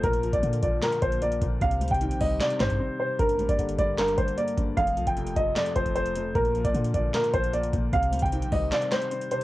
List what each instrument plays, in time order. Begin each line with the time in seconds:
Already playing: analog synth pad F4
0.03 808-style bass A#1, felt piano A#2, analog synth pad D3 A#3 A#4, grand piano A#4, kick, closed hi-hat
0.13 closed hi-hat
0.23 felt piano F3, closed hi-hat
0.33 808-style bass A#1, grand piano D5, kick, closed hi-hat
0.43 808-style bass A#2, felt piano D3, closed hi-hat
0.53 closed hi-hat
0.63 808-style bass A#1, felt piano F3, grand piano D5, kick, closed hi-hat
0.82 felt piano A#2, grand piano A#4, snare, clap, closed hi-hat
0.92 closed hi-hat
1.02 808-style bass A#1, felt piano F3, grand piano C5, kick, closed hi-hat
1.12 closed hi-hat
1.22 felt piano A#3, grand piano D5, closed hi-hat
1.32 closed hi-hat
1.41 808-style bass A#1, felt piano A#2, kick, closed hi-hat
1.61 808-style bass C2, felt piano C3, analog synth pad D#3 C4 G4 C5, grand piano F5, kick, closed hi-hat
1.71 closed hi-hat
1.81 808-style bass D2, felt piano G3, closed hi-hat
1.88 808-style bass C2, grand piano G5, kick, closed hi-hat
1.94 closed hi-hat
2.01 felt piano D#3, closed hi-hat
2.11 808-style bass A#1, closed hi-hat
2.20 808-style bass C2, felt piano G3, grand piano D#5, kick, open hi-hat
2.40 felt piano C3, grand piano D5, snare, clap, closed hi-hat
2.50 closed hi-hat
2.60 808-style bass G2, felt piano G3, grand piano C5, kick, snare, clap, closed hi-hat
2.70 kick, closed hi-hat
2.80 felt piano C4
3.00 felt piano C3, grand piano C5
3.19 808-style bass G1, felt piano G2, analog synth pad D3 A#3 G4 A#4, grand piano A#4, kick, closed hi-hat
3.29 closed hi-hat
3.39 808-style bass A1, felt piano G3, closed hi-hat
3.49 808-style bass G1, grand piano D5, kick, closed hi-hat
3.59 808-style bass G1, felt piano D3, closed hi-hat
3.69 closed hi-hat
3.79 808-style bass G1, felt piano G3, grand piano D5, kick, closed hi-hat
3.98 felt piano G2, grand piano A#4, snare, clap, closed hi-hat
4.08 closed hi-hat
4.18 808-style bass G1, felt piano G3, grand piano C5, kick, closed hi-hat
4.28 closed hi-hat
4.38 felt piano A#3, grand piano D5, closed hi-hat
4.48 closed hi-hat
4.57 808-style bass G1, felt piano G2, kick, closed hi-hat
4.77 808-style bass F1, felt piano F2, analog synth pad C3 A3 F4 A4, grand piano F5, kick, closed hi-hat
4.87 closed hi-hat
4.97 808-style bass C2, felt piano F3, closed hi-hat
5.07 808-style bass F1, grand piano G5, kick, closed hi-hat
5.16 felt piano C3, closed hi-hat
5.27 closed hi-hat
5.36 808-style bass F1, felt piano F3, grand piano D#5, kick, closed hi-hat
5.56 felt piano F2, grand piano D5, snare, clap, closed hi-hat
5.66 closed hi-hat
5.76 808-style bass F1, felt piano F3, grand piano C5, kick, closed hi-hat
5.86 kick, closed hi-hat
5.96 felt piano A3, grand piano C5, closed hi-hat
6.06 closed hi-hat
6.15 felt piano F2, closed hi-hat
6.35 808-style bass A#1, felt piano A#2, analog synth pad D3 A#3 A#4, grand piano A#4, kick, closed hi-hat
6.45 closed hi-hat
6.55 felt piano F3, closed hi-hat
6.65 808-style bass A#1, grand piano D5, kick, closed hi-hat
6.75 808-style bass A#2, felt piano D3, closed hi-hat
6.84 closed hi-hat
6.94 808-style bass A#1, felt piano F3, grand piano D5, kick, closed hi-hat
7.14 felt piano A#2, grand piano A#4, snare, clap, closed hi-hat
7.24 closed hi-hat
7.33 808-style bass A#1, felt piano F3, grand piano C5, kick, closed hi-hat
7.44 closed hi-hat
7.53 felt piano A#3, grand piano D5, closed hi-hat
7.63 closed hi-hat
7.73 808-style bass A#1, felt piano A#2, kick, closed hi-hat
7.93 808-style bass C2, felt piano C3, analog synth pad D#3 C4 G4 C5, grand piano F5, kick, closed hi-hat
8.03 closed hi-hat
8.12 808-style bass D2, felt piano G3, closed hi-hat
8.19 808-style bass C2, grand piano G5, kick, closed hi-hat
8.26 closed hi-hat
8.32 felt piano D#3, closed hi-hat
8.42 808-style bass A#1, closed hi-hat
8.52 808-style bass C2, felt piano G3, grand piano D#5, kick, open hi-hat
8.72 felt piano C3, grand piano D5, snare, clap, closed hi-hat
8.82 closed hi-hat
8.92 felt piano G3, grand piano C5, snare, clap, closed hi-hat
9.02 closed hi-hat
9.11 felt piano C4, closed hi-hat
9.21 closed hi-hat
9.31 felt piano C3, grand piano C5, closed hi-hat